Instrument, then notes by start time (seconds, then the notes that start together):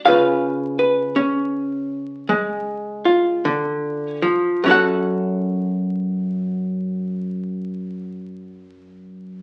hollow-body jazz guitar
0.05 C#3 C#4 F4 B4 F5
0.79 B4
1.16 C#4
2.29 G#3
3.05 F4
3.45 D3
4.22 F3
4.64 F#2 C#4
4.68 F#4 A4 F#5